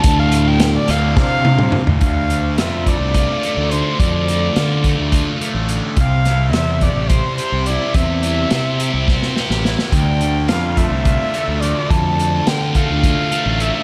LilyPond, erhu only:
\new Staff \with { instrumentName = "Erhu" } { \time 7/8 \key d \minor \tempo 4 = 106 a''16 f''8 g''8 d''16 f''8 f''4 r8 | f''4 e''8 d''4. c''8 | d''2 r4. | f''4 e''8 d''8 c''8 c''8 d''8 |
e''2. r8 | g''4 f''8 e''4. d''8 | a''4 g''8 f''4. e''8 | }